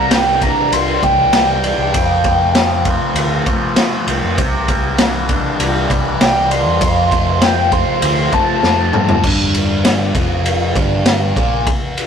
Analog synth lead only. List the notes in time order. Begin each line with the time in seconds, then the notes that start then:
Already playing: A#5
0.12 G5
0.43 A#5
0.74 C6
1.04 G5
6.21 G5
6.52 C6
7.12 C6
7.43 G5
7.73 C6
8.03 C6
8.34 A5